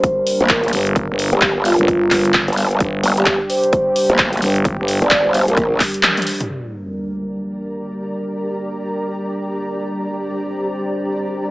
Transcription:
0.00 6.46 G3 medium
0.00 6.46 D4 medium
0.00 2.80 A#4 medium
0.00 0.46 C5 medium
0.00 kick loud
0.00 closed hi-hat medium
0.27 open hi-hat loud
0.41 0.71 A#1 loud
0.41 closed hi-hat medium
0.49 0.68 A#4 medium
0.49 kick loud
0.49 clap loud
0.49 closed hi-hat medium
0.64 closed hi-hat soft
0.68 closed hi-hat medium
0.73 1.08 G1 loud
0.73 open hi-hat loud
0.87 closed hi-hat medium
0.96 kick loud
0.96 closed hi-hat medium
1.10 1.31 G1 loud
1.19 open hi-hat loud
1.33 1.54 G1 loud
1.33 1.48 G4 medium
1.41 kick loud
1.41 clap loud
1.41 closed hi-hat medium
1.56 1.77 G1 loud
1.65 2.31 F4 medium
1.65 open hi-hat loud
1.79 2.10 G1 loud
1.79 closed hi-hat medium
1.88 kick loud
1.88 closed hi-hat medium
2.11 2.46 G1 medium
2.11 kick medium
2.11 clap medium
2.11 open hi-hat loud
2.25 closed hi-hat medium
2.34 kick loud
2.34 clap loud
2.34 closed hi-hat medium
2.48 2.79 G1 medium
2.48 closed hi-hat soft
2.53 closed hi-hat medium
2.57 open hi-hat loud
2.71 closed hi-hat medium
2.80 3.02 G1 loud
2.80 6.49 G4 medium
2.80 kick loud
2.80 closed hi-hat medium
3.03 3.38 G1 loud
3.03 open hi-hat loud
3.17 3.33 G4 medium
3.17 closed hi-hat medium
3.26 kick loud
3.26 clap loud
3.26 closed hi-hat medium
3.50 4.15 C5 medium
3.50 open hi-hat loud
3.64 closed hi-hat medium
3.73 kick loud
3.73 closed hi-hat medium
3.96 open hi-hat loud
4.10 4.40 A#1 loud
4.10 closed hi-hat medium
4.18 kick loud
4.18 clap loud
4.18 closed hi-hat medium
4.33 closed hi-hat medium
4.37 closed hi-hat medium
4.42 4.77 G1 loud
4.42 open hi-hat loud
4.56 closed hi-hat medium
4.65 kick loud
4.65 closed hi-hat medium
4.79 5.00 G1 loud
4.88 open hi-hat loud
5.02 5.23 G1 loud
5.02 5.08 D5 medium
5.02 closed hi-hat medium
5.11 5.20 D5 medium
5.11 kick loud
5.11 clap loud
5.11 closed hi-hat medium
5.25 5.46 G1 loud
5.25 5.40 C5 loud
5.34 open hi-hat loud
5.48 5.79 A#1 loud
5.48 5.54 A#4 medium
5.48 closed hi-hat medium
5.57 5.66 A#4 medium
5.57 kick loud
5.57 closed hi-hat medium
5.80 kick medium
5.80 clap medium
5.80 open hi-hat loud
5.94 closed hi-hat medium
6.03 clap loud
6.03 closed hi-hat medium
6.03 high tom medium
6.17 closed hi-hat medium
6.17 high tom medium
6.22 closed hi-hat medium
6.27 open hi-hat loud
6.40 closed hi-hat medium
6.40 mid tom medium
6.50 11.51 G3 medium
6.50 11.51 D4 medium
6.50 11.51 G4 medium
6.50 10.18 A#4 medium
6.50 sub drop medium
6.64 11.51 D5 medium
6.71 11.51 A#5 medium
10.19 11.51 C5 medium

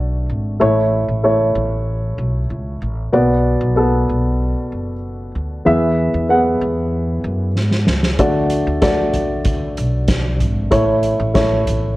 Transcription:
0.00 0.25 B1 medium
0.00 0.63 D3 medium
0.00 0.60 A3 medium
0.00 0.63 F#4 medium
0.00 0.62 D5 medium
0.30 0.59 G#1 medium
0.60 1.05 A1 medium
0.60 1.51 A2 medium
0.60 1.19 A3 medium
0.60 1.19 E4 medium
0.60 1.19 C#5 medium
1.08 1.52 A1 medium
1.23 2.40 A3 medium
1.23 2.40 E4 medium
1.23 2.41 C#5 medium
1.55 2.15 A1 medium
2.18 2.48 B1 medium
2.50 2.80 C#2 medium
2.82 3.11 A1 medium
3.13 3.58 B1 medium
3.13 4.04 B2 medium
3.13 3.71 B3 medium
3.13 3.72 F#4 medium
3.13 3.72 D5 medium
3.61 4.05 B1 medium
3.76 4.93 B3 medium
3.76 4.93 F#4 medium
3.76 4.93 A4 medium
4.09 4.53 B1 medium
4.72 5.31 F#1 medium
5.35 5.64 D2 medium
5.65 6.11 E2 medium
5.65 6.57 E3 medium
5.65 6.24 B3 medium
5.65 6.24 G#4 medium
5.65 6.25 E5 medium
6.14 6.58 E2 medium
6.29 7.46 B3 medium
6.29 7.46 G#4 medium
6.29 7.46 F#5 medium
6.61 7.20 E2 medium
7.24 7.56 F#2 medium
7.56 7.85 G#2 medium
7.56 snare medium
7.71 snare medium
7.87 8.17 C#2 medium
7.87 snare medium
8.03 snare medium
8.19 8.63 D2 medium
8.19 9.10 D3 medium
8.19 8.77 A3 medium
8.19 8.77 F#4 medium
8.19 8.78 D5 medium
8.19 kick medium
8.19 closed hi-hat medium
8.50 closed hi-hat medium
8.67 9.11 D2 medium
8.82 9.98 A3 medium
8.82 9.99 F#4 medium
8.82 9.99 D5 medium
8.82 kick loud
8.82 snare medium
8.82 closed hi-hat medium
9.13 9.58 D2 medium
9.13 closed hi-hat medium
9.13 floor tom medium
9.45 kick medium
9.45 closed hi-hat medium
9.77 10.37 B1 medium
9.77 closed hi-hat medium
10.08 kick loud
10.08 snare loud
10.08 closed hi-hat medium
10.40 10.70 G#1 medium
10.40 closed hi-hat medium
10.40 floor tom medium
10.71 11.16 A1 medium
10.71 11.62 A2 medium
10.71 11.30 A3 medium
10.71 11.30 E4 medium
10.71 11.30 C#5 medium
10.71 kick medium
10.71 closed hi-hat medium
11.03 closed hi-hat medium
11.19 11.63 A1 medium
11.34 11.97 A3 medium
11.34 11.97 E4 medium
11.34 11.97 C#5 medium
11.34 kick loud
11.34 snare loud
11.34 closed hi-hat medium
11.67 11.97 A1 medium
11.67 closed hi-hat medium
11.67 floor tom medium

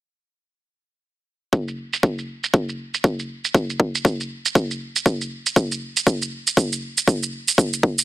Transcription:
1.53 kick loud
1.53 shaker medium
1.68 shaker soft
1.93 shaker medium
2.03 kick loud
2.03 shaker medium
2.18 shaker soft
2.44 shaker medium
2.54 kick loud
2.54 shaker medium
2.69 shaker soft
2.94 shaker medium
3.04 kick loud
3.04 shaker medium
3.19 shaker soft
3.45 shaker medium
3.54 kick loud
3.54 shaker medium
3.70 shaker soft
3.80 kick medium
3.95 shaker medium
4.05 kick loud
4.05 shaker medium
4.20 shaker soft
4.46 shaker medium
4.55 kick loud
4.55 shaker medium
4.71 shaker soft
4.96 shaker medium
5.06 kick loud
5.06 shaker medium
5.21 shaker soft
5.46 shaker medium
5.56 kick loud
5.56 shaker medium
5.72 shaker soft
5.97 shaker medium
6.07 kick loud
6.07 shaker medium
6.22 shaker soft
6.47 shaker medium
6.57 kick loud
6.57 shaker medium
6.73 shaker soft
6.98 shaker medium
7.08 kick loud
7.08 shaker medium
7.23 shaker soft
7.48 shaker medium
7.58 kick loud
7.58 shaker medium
7.73 shaker soft
7.83 kick medium
7.99 shaker medium

